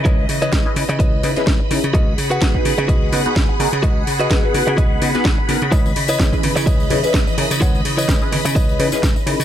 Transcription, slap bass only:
X:1
M:4/4
L:1/16
Q:"Swing 16ths" 1/4=127
K:C#m
V:1 name="Slap bass" clef=bass
C,,2 C,2 C,, z C, C, C,,2 C, z C,, z C, C, | C,,2 C,2 C,, z C, C, C,,2 C, z C,, z C, C, | C,,2 C,2 C,, z C, C, C,,2 C, z C,, z C, C, | C,,2 C,2 C,, z C, C, C,,2 C, z C,, z C, C, |
C,,2 C,2 C,, z C, C, C,,2 C, z C,, z C, C, |]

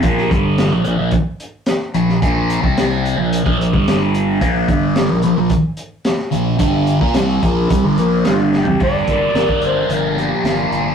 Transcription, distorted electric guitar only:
X:1
M:4/4
L:1/16
Q:1/4=109
K:Bb
V:1 name="Distorted electric guitar" clef=bass
[B,,F,B,]2 [G,,D,G,]3 [B,,F,] [B,,F,] [B,,F,] z6 [B,,F,]2 | [B,,F,B,]3 [C,G,C]4 [B,,F,]2 [B,,F,] [B,,F,] [G,,D,G,]4- [G,,D,G,] | [B,,F,B,]2 [G,,D,G,]3 [B,,F,] [B,,F,] [B,,F,] z6 [B,,F,]2 | [G,,D,G,]3 [B,F] [C,G,C]2 [B,,F,B,]2 [C,G,] [G,,D,] [B,,F,B,]2 [G,,D,G,]3 [C,G,] |
G,,2 B,2 B2 D2 F,2 B,2 D2 F,2 |]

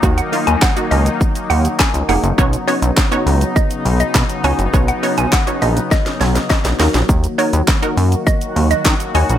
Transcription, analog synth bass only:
X:1
M:4/4
L:1/16
Q:1/4=102
K:Ebm
V:1 name="Analog synth bass" clef=bass
E,,2 z E,, z2 D,,2 z2 E,,2 z D,, F,,, G,,, | =B,,,2 z B,,, z2 ^C,,2 z2 B,,,2 =B,, z C,, ^F,,, | =B,,,2 z B,,, z2 _B,,,2 z2 =B,,,2 z _B,,, E,, B,,, | E,,2 z E,, z2 G,,2 z2 E,,2 E, z E,, B,,, |]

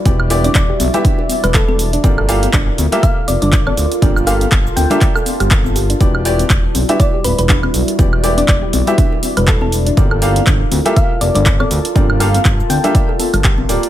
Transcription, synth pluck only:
X:1
M:4/4
L:1/16
Q:"Swing 16ths" 1/4=121
K:G
V:1 name="Synth pluck"
z3 d d z6 B A A z2 | z8 =f z d d z d z2 | z2 =f z3 g6 z4 | z8 d z B B z4 |
z3 d d z6 B A A z2 | z8 =f z d d z d z2 | z2 =f z3 g6 z4 |]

